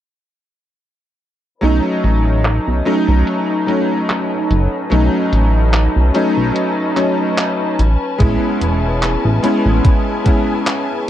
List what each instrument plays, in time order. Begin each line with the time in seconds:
1.61 analog synth bass B1, electric grand piano F#3 A3 C#4 D#4, string section C#4 B4 D#5 A5, closed hi-hat
2.04 analog synth bass A1, closed hi-hat
2.45 clap, closed hi-hat
2.67 analog synth bass B1
2.85 electric grand piano F#3 A3 C#4 D#4, closed hi-hat
3.08 analog synth bass B1
3.27 closed hi-hat
3.66 electric grand piano F#3 A3 C#4 D#4, closed hi-hat
4.10 clap, closed hi-hat
4.51 analog synth bass F#1, closed hi-hat
4.90 analog synth bass B1, electric grand piano F#3 A3 C#4 D#4, closed hi-hat
5.33 analog synth bass A1, closed hi-hat
5.73 clap, closed hi-hat
5.96 analog synth bass B1
6.14 electric grand piano F#3 A3 C#4 D#4, closed hi-hat
6.37 analog synth bass B1
6.56 closed hi-hat
6.96 electric grand piano F#3 A3 C#4 D#4, clap, closed hi-hat
7.38 clap, closed hi-hat
7.79 analog synth bass A1, string section G#5, closed hi-hat
8.18 analog synth bass A1, electric grand piano G#3 B3 C#4 E4, kick, closed hi-hat
8.61 analog synth bass E1, closed hi-hat
9.03 clap, closed hi-hat
9.25 analog synth bass A1
9.43 electric grand piano G#3 B3 C#4 E4, closed hi-hat
9.66 analog synth bass A1
9.85 kick, closed hi-hat
10.24 electric grand piano G#3 B3 C#4 E4, kick, closed hi-hat
10.67 clap, closed hi-hat